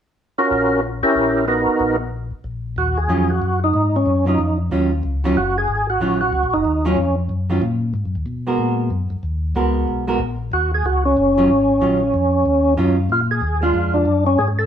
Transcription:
0.38 tonewheel organ C#4 F4 F#4 A#4
0.51 tonewheel organ A#1
1.03 tonewheel organ C#4 E4 G4 A#4
1.15 tonewheel organ A#1
1.48 tonewheel organ B3 D#4 F#4 A#4
1.80 tonewheel organ A#1
2.44 tonewheel organ A#1
2.76 tonewheel organ D#2 F#4
2.97 tonewheel organ G#4
3.08 tonewheel organ F2, hollow-body jazz guitar D#3 F#3 C#4 F4
3.30 tonewheel organ F#4
3.42 tonewheel organ F#2
3.64 tonewheel organ D#4
3.74 tonewheel organ G#2
3.96 tonewheel organ C#4
4.06 tonewheel organ F#2
4.26 hollow-body jazz guitar D#3 F#3 C#4 F4, tonewheel organ D#4
4.39 tonewheel organ F2
4.71 tonewheel organ D#2, hollow-body jazz guitar D#3 F#3 C#4 F4
5.03 tonewheel organ C#2
5.24 hollow-body jazz guitar D#3 F#3 C#4 F4
5.35 tonewheel organ F#1 F#4
5.58 tonewheel organ G#4
5.68 tonewheel organ G#1
5.90 tonewheel organ F#4
6.00 tonewheel organ A#1, hollow-body jazz guitar D#3 F#3 C#4 F4
6.21 tonewheel organ F#4
6.33 tonewheel organ C#2
6.43 tonewheel organ A#1
6.54 tonewheel organ F#1 D#4
6.65 tonewheel organ D#2
6.85 hollow-body jazz guitar D#3 F#3 C#4 F4, tonewheel organ C#4
6.97 tonewheel organ F2
7.29 tonewheel organ F#2
7.50 hollow-body jazz guitar D#3 F#3 C#4 F4
7.62 tonewheel organ A#2
7.94 tonewheel organ G#2
8.05 tonewheel organ F#2
8.15 tonewheel organ D#2
8.26 tonewheel organ B2
8.47 hollow-body jazz guitar G#3 B3 F#4 A#4
8.58 tonewheel organ A#2
8.90 tonewheel organ F#2
9.10 tonewheel organ F#2
9.23 tonewheel organ D#2
9.55 tonewheel organ C#2, hollow-body jazz guitar G#3 B3 F#4 A#4
9.88 tonewheel organ B1
10.07 hollow-body jazz guitar G#3 B3 F#4 A#4
10.19 tonewheel organ A#1
10.52 tonewheel organ D#2 F#4
10.74 tonewheel organ G#4
10.84 tonewheel organ C#2 F#4
11.05 tonewheel organ C#4
11.17 tonewheel organ F#1
11.38 hollow-body jazz guitar D#3 F#3 C#4 F4
11.49 tonewheel organ G#1
11.81 tonewheel organ A#1, hollow-body jazz guitar D#3 F#3 C#4 F4
12.14 tonewheel organ F2
12.46 tonewheel organ D#2
12.77 tonewheel organ F#2, hollow-body jazz guitar D#3 F#3 C#4 F4
13.10 tonewheel organ A#2 F4
13.31 tonewheel organ G#4
13.42 tonewheel organ D#2
13.62 hollow-body jazz guitar G#3 D4 F4, tonewheel organ F4
13.74 tonewheel organ F2
13.94 tonewheel organ D4
14.05 tonewheel organ F#2
14.27 tonewheel organ C#4
14.39 tonewheel organ G#2 G#4
14.59 tonewheel organ A4

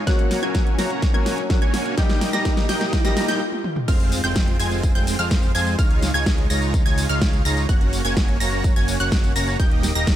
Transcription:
Already playing: riser
0.06 felt piano F#3 A#3 C#4 F#4, supersaw synth A#3 C#4 F#4 C#5 F#5, synth pluck F#6, kick, snare, closed hi-hat
0.19 closed hi-hat
0.31 snare, open hi-hat
0.42 felt piano F#3 A#3 C#4 F#4, supersaw synth A#3 C#4 F#4 C#5 G#5, synth pluck G#6, closed hi-hat
0.55 kick, snare, closed hi-hat
0.67 closed hi-hat
0.78 felt piano F#3 A#3 C#4 F#4, supersaw synth A#3 C#4 F#4 C#5 A#5, synth pluck A#6, snare, open hi-hat
0.90 closed hi-hat
1.02 kick, snare, closed hi-hat
1.13 felt piano F#3 A#3 C#4 F#4, supersaw synth A#3 C#4 F#4 C#5 G#5, synth pluck G#6, closed hi-hat
1.26 snare, open hi-hat
1.38 closed hi-hat
1.49 felt piano F#3 A#3 C#4 F#4, kick, snare, closed hi-hat
1.62 analog synth bass F#2, supersaw synth A#3 C#4 F#4 C#5 G#5, synth pluck G#6, closed hi-hat
1.74 snare, open hi-hat
1.86 closed hi-hat
1.97 felt piano G3 A#3 D#4 G4, supersaw synth A#3 D#4 G4 D#5 G5, synth pluck G6, kick, snare, closed hi-hat
2.10 snare, closed hi-hat
2.21 snare, open hi-hat
2.33 felt piano G3 A#3 D#4 G4, supersaw synth A#3 D#4 G4 D#5 A#5, synth pluck A#6, snare, closed hi-hat
2.45 kick, snare, closed hi-hat
2.57 snare, closed hi-hat
2.69 felt piano G3 A#3 D#4 G4, supersaw synth A#3 D#4 G4 D#5 G5, synth pluck G6, snare, open hi-hat
2.81 snare, closed hi-hat
2.93 kick, snare, closed hi-hat
3.04 felt piano G3 A#3 D#4 G4, supersaw synth A#3 D#4 G4 D#5 A#5, synth pluck A#6, snare, closed hi-hat
3.17 snare, open hi-hat
3.28 supersaw synth A#3 D#4 G4 D#5 G5, synth pluck G6, snare, closed hi-hat
3.52 high tom
3.64 mid tom
3.76 mid tom
3.88 analog synth bass F1, supersaw synth G#3 C4 F4 C5 F5, synth pluck F6, kick, closed hi-hat, crash, tambourine, impact
4.00 closed hi-hat
4.12 open hi-hat, tambourine
4.24 analog synth bass F1, supersaw synth G#3 C4 F4 C5 G5, synth pluck G6, closed hi-hat, tambourine
4.36 kick, snare, closed hi-hat, tambourine
4.48 closed hi-hat
4.59 analog synth bass F1, supersaw synth G#3 C4 F4 C5 G#5, synth pluck G#6, open hi-hat, tambourine
4.72 closed hi-hat, tambourine
4.83 kick, closed hi-hat, tambourine
4.95 analog synth bass F1, supersaw synth G#3 C4 F4 C5 G5, synth pluck G6, closed hi-hat, tambourine
5.07 open hi-hat, tambourine
5.19 analog synth bass F2, supersaw synth G#3 C4 F4 C5 F5, synth pluck F6, closed hi-hat, tambourine
5.31 kick, snare, closed hi-hat, tambourine
5.43 closed hi-hat, tambourine
5.55 analog synth bass F2, supersaw synth G#3 C4 F4 C5 G#5, synth pluck G#6, open hi-hat, tambourine
5.67 closed hi-hat, tambourine
5.79 analog synth bass C#2, supersaw synth G#3 D#4 F4 C#5 F5, synth pluck F6, kick, closed hi-hat, tambourine
5.91 closed hi-hat
6.02 snare, open hi-hat, tambourine
6.14 analog synth bass C#2, supersaw synth G#3 D#4 F4 C#5 G#5, synth pluck G#6, closed hi-hat, tambourine
6.26 kick, snare, closed hi-hat, tambourine
6.38 closed hi-hat
6.50 analog synth bass C#2, supersaw synth G#3 D#4 F4 C#5 A#5, synth pluck A#6, open hi-hat, tambourine
6.62 closed hi-hat, tambourine
6.74 kick, closed hi-hat, tambourine
6.86 analog synth bass C#2, supersaw synth G#3 D#4 F4 C#5 G#5, synth pluck G#6, closed hi-hat, tambourine
6.98 open hi-hat, tambourine
7.09 analog synth bass C#2, supersaw synth G#3 D#4 F4 C#5 F5, synth pluck F6, closed hi-hat, tambourine
7.21 kick, snare, closed hi-hat, tambourine
7.33 closed hi-hat, tambourine
7.45 analog synth bass C#2, supersaw synth G#3 D#4 F4 C#5 A#5, synth pluck A#6, open hi-hat, tambourine
7.57 closed hi-hat, tambourine
7.69 analog synth bass F#1, supersaw synth A#3 C#4 F#4 C#5 F#5, synth pluck F#6, kick, closed hi-hat, tambourine
7.81 closed hi-hat
7.93 open hi-hat, tambourine
8.05 analog synth bass F#1, supersaw synth A#3 C#4 F#4 C#5 G#5, synth pluck G#6, closed hi-hat, tambourine
8.17 kick, snare, closed hi-hat, tambourine
8.29 closed hi-hat
8.40 analog synth bass F#1, supersaw synth A#3 C#4 F#4 C#5 A#5, synth pluck A#6, open hi-hat, tambourine
8.53 tambourine
8.64 kick, closed hi-hat, tambourine
8.76 analog synth bass F#1, supersaw synth A#3 C#4 F#4 C#5 G#5, synth pluck G#6, closed hi-hat, tambourine
8.88 open hi-hat, tambourine
9.00 analog synth bass F#1, supersaw synth A#3 C#4 F#4 C#5 F#5, synth pluck F#6, closed hi-hat, tambourine
9.12 kick, snare, closed hi-hat, tambourine
9.24 closed hi-hat, tambourine
9.36 analog synth bass F#1, supersaw synth A#3 C#4 F#4 C#5 A#5, synth pluck A#6, open hi-hat, tambourine
9.48 closed hi-hat, tambourine
9.60 analog synth bass D#1, supersaw synth A#3 D#4 G4 D#5 G5, synth pluck G6, kick, closed hi-hat, tambourine
9.71 closed hi-hat
9.83 snare, open hi-hat, tambourine
9.95 analog synth bass D#1, supersaw synth A#3 D#4 G4 D#5 A#5, synth pluck A#6, closed hi-hat, tambourine
10.07 kick, snare, closed hi-hat, tambourine

